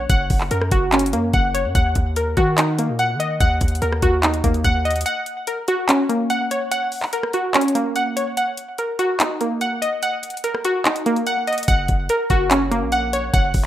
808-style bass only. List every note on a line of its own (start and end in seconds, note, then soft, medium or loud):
0.10 0.29 F#1 loud
0.30 0.50 F#1 loud
0.51 0.71 F#2 loud
0.72 1.14 F#1 loud
1.13 1.33 F#2 loud
1.34 1.66 F#1 loud
1.65 1.75 F#2 medium
1.75 1.95 D#2 loud
1.96 2.35 D#2 loud
2.37 2.90 D#3 loud
2.89 3.16 A#2 loud
3.15 3.39 D#3 loud
3.40 3.60 D#2 loud
3.61 3.81 D#2 loud
3.82 4.02 D#2 loud
4.03 4.42 D#2 loud
4.44 4.64 D#2 loud
4.65 5.04 D#2 loud
11.68 11.88 F#1 loud
11.89 12.09 F#1 loud
12.30 12.83 F#1 loud
12.82 13.31 A#1 loud
13.34 13.54 F#1 loud
13.54 13.66 F#1 loud